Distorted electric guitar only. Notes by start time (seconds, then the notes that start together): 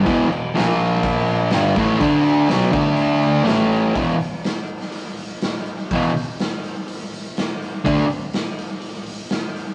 0.04 E2 B2 E3
0.29 E2 B2
0.55 A#2 F3 A#3
1.51 G2 D3 G3
1.76 A2 E3 A3
2.00 D3 A3 D4
2.49 B2 F#3 B3
2.71 D3 A3 D4
3.44 A2 E3 A3
3.94 E2 B2 E3
5.92 E2 B2 E3
7.84 D3 A3 D4